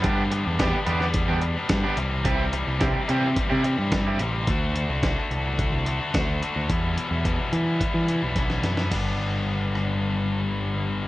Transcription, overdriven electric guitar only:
X:1
M:4/4
L:1/16
Q:1/4=108
K:G
V:1 name="Overdriven electric guitar"
[G,B,DG] z3 [G,B,DG] z [G,B,DG] z2 [G,B,DG] z3 [G,B,DG] z2 | [G,CEG] z3 [G,CEG] z [G,CEG] z2 [G,CEG] z3 [G,CEG] z2 | z16 | z16 |
z16 |]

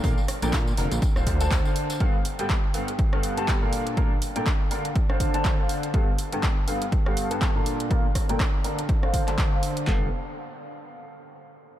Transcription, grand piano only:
X:1
M:4/4
L:1/16
Q:"Swing 16ths" 1/4=122
K:Ddor
V:1 name="Grand piano"
[_B,,DA_Bf] z2 [B,,DABg] z2 [D,DABf] z2 [D,DAcf]2 [D,DAca]2 [D,DAcf]3 | [G,,B,GAf] z2 [G,,B,GAg] z2 [G,,B,GAf] z2 [G,,B,GAf]2 [G,,B,GAa]2 [_B,,DA_Bf]3 | [_B,,DA_Bf] z2 [B,,DABg] z2 [D,DABf] z2 [D,DAcf]2 [D,DAca]2 [D,DAcf]3 | [G,,B,GAf] z2 [G,,B,GAg] z2 [G,,B,GAf] z2 [G,,B,GAf]2 [G,,B,GAa]2 [_B,,DA_Bf]3 |
[_B,,DA_Bf] z2 [B,,DABg] z2 [D,DABf] z2 [D,DAcf]2 [D,DAca]2 [D,DAcf]3 | [B,GAf]2 z12 z2 |]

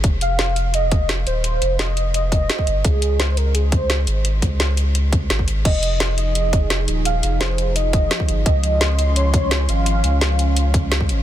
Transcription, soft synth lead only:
X:1
M:4/4
L:1/8
Q:1/4=171
K:Fm
V:1 name="Soft synth lead"
z f3 e2 z c- | c2 e2 e4 | A2 c B A c3- | c z6 z |
e3 e4 z | f2 c2 e4 | e4 d3 f- | f4- f z3 |]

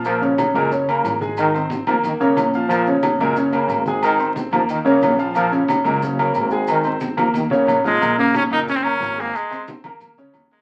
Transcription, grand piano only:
X:1
M:4/4
L:1/8
Q:1/4=180
K:Bbm
V:1 name="Grand piano"
[B,,B,B] [D,Dd]2 [B,,B,B] [D,Dd] [B,Bb]2 [A,Aa]- | [A,Aa] [Ccc']2 [B,Bb]2 [D,Dd]2 [F,Ff] | [B,,B,B] [D,Dd]2 [B,,B,B] [D,Dd] [B,Bb]2 [A,Aa]- | [A,Aa] [Ccc']2 [B,Bb]2 [D,Dd]2 [F,Ff] |
[B,,B,B] [D,Dd]2 [B,,B,B] [D,Dd] [B,Bb]2 [A,Aa]- | [A,Aa] [Ccc']2 [B,Bb]2 [D,Dd]2 [F,Ff] | [B,,B,B] [D,Dd]2 [B,,B,B] [D,Dd] [B,Bb]2 [A,Aa]- | [A,Aa] [Ccc']2 [B,Bb]2 [D,Dd]2 [B,Bb] |]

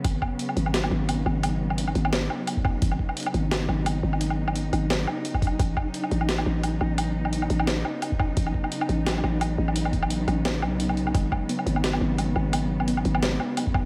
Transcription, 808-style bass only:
X:1
M:4/4
L:1/8
Q:"Swing 16ths" 1/4=173
K:G#phr
V:1 name="808-style bass" clef=bass
G,,, z2 G,,,2 G,,,2 G,,,- | G,,,3 G,,,2 z3 | G,,, z2 G,,,2 G,,,2 G,,,- | G,,,3 G,,,2 z3 |
A,,, z2 A,,,2 A,,,2 A,,,- | A,,,3 A,,,2 z3 | A,,, z2 A,,,2 A,,,2 A,,,- | A,,,3 A,,,2 B,,,3 |
G,,, z2 G,,,2 G,,,2 G,,,- | G,,,3 G,,,2 z3 |]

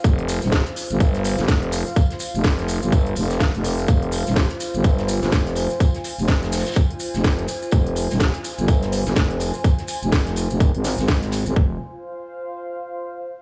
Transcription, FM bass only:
X:1
M:4/4
L:1/16
Q:"Swing 16ths" 1/4=125
K:Fm
V:1 name="FM bass" clef=bass
F,,,3 E,,,2 z2 G,,,4 G,,, F,,,3 z | z3 F,,,4 G,,,3 F,,,3 F,,,3 | F,,,3 E,,,2 z2 G,,,4 G,,, F,,,3 z | z3 F,,,4 z4 F,,,3 z2 |
F,,,3 E,,,2 z2 G,,,4 G,,, F,,,3 z | z3 F,,,4 F,,,2 A,,,2 A,,,4 A,,, | F,,,2 z12 z2 |]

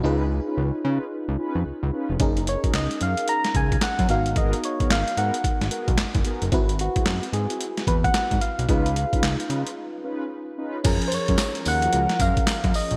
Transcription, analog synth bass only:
X:1
M:4/4
L:1/16
Q:"Swing 16ths" 1/4=111
K:F#
V:1 name="Analog synth bass" clef=bass
C,,3 z C,, z C, z2 C,, z E,, C,, C,, z E,,, | F,,,3 z C,, z F,, z3 C,,2 z F,, G,,,2- | G,,,2 z2 G,,, z G,, z2 G,,, z B,,, F,,, F,,, z F,,, | G,,,3 z F,, z G,, z3 =E,,2 z G,, z B,,, |
C,,3 z C,, z C, z8 z | F,,, z F,, F,, z2 D,,2 C,, z F,, z2 F,, z A,,, |]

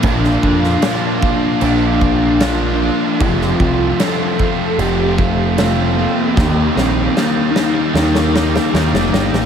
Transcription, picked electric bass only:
X:1
M:4/4
L:1/16
Q:1/4=76
K:Bb
V:1 name="Picked electric bass" clef=bass
B,,,2 F,,2 z4 B,,,8 | F,,,2 C,,2 z4 F,,,8 | E,,2 B,,,2 z4 E,,4 E,, F,,, G,,, A,,, |]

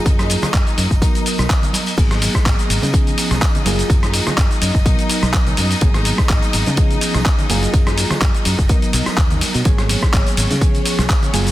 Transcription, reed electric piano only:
X:1
M:4/4
L:1/8
Q:"Swing 16ths" 1/4=125
K:F#
V:1 name="Reed electric piano"
[F,A,EG]4 [F,B,DA]4 | [F,A,B,G]4 [E,B,CG]3 [F,A,EG]- | [F,A,EG]4 [F,B,DA]4 | [F,A,B,G]4 [E,B,CG]3 [F,A,EG]- |
[F,A,EG]4 [F,B,DA]4 | [F,A,B,G]4 [E,B,CG]3 [F,A,EG] |]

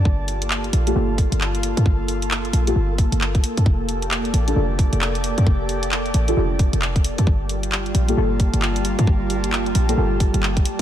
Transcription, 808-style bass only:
X:1
M:4/4
L:1/16
Q:"Swing 16ths" 1/4=133
K:Gm
V:1 name="808-style bass" clef=bass
G,,,6 B,,,2 G,,,3 G,,,4 G,, | G,,,6 B,,,2 G,,,3 G,,,3 z F,, | F,,,6 A,,,2 F,,,3 F,,,4 F,, | F,,,6 A,,,2 F,,,3 F,,,4 F,, |
G,,,6 B,,,2 G,,,3 G,,,4 G,, | G,,,6 B,,,2 G,,,3 G,,,3 z2 |]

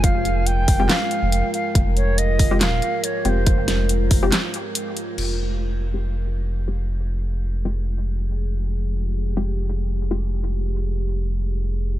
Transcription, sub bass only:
X:1
M:4/4
L:1/16
Q:"Swing 16ths" 1/4=140
K:Fm
V:1 name="Sub bass" clef=bass
F,,,6 F,,,2 z3 F,,,2 z3 | F,,,6 F,,,2 E,,,2 z4 F,,,2- | F,,,6 F,,,2 z8 | F,,,16- |
F,,,16- | F,,,16- | F,,,16 |]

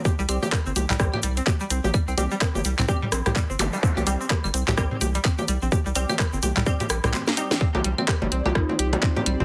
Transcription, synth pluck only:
X:1
M:4/4
L:1/16
Q:"Swing 16ths" 1/4=127
K:Cm
V:1 name="Synth pluck"
G G, C G G, C G G, C G G, C G G, C G | G, C G G, C G G, C G G, C G G, C G G, | C G G, C G G, C G G, C G G, C G G, C | G G, C G G, C G G, C G G C C B, E C |
C G G, C G G, C G G, C G G, C G G, C |]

